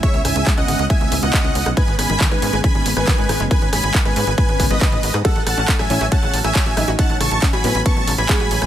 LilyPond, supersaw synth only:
\new Staff \with { instrumentName = "Supersaw synth" } { \time 4/4 \key gis \phrygian \tempo 4 = 138 <cis'' e''>8 <e'' gis''>8 r16 <dis'' fis''>8 r16 <e'' gis''>8 r16 <dis'' fis''>4 r16 | <b' gis''>8 <gis'' b''>8 r16 <b' gis''>8 r16 <gis'' b''>8 r16 <b' gis''>4 r16 | <b' gis''>8 <gis'' b''>8 r16 <b' gis''>8 r16 <b' gis''>8 r16 <b' dis''>4 r16 | <a' fis''>8 <fis'' a''>8 r16 <e'' gis''>8 r16 <fis'' a''>8 r16 <e'' gis''>4 r16 |
<fis'' a''>8 <a'' cis'''>8 r16 <gis'' b''>8 r16 <a'' cis'''>8 r16 <gis'' b''>4 r16 | }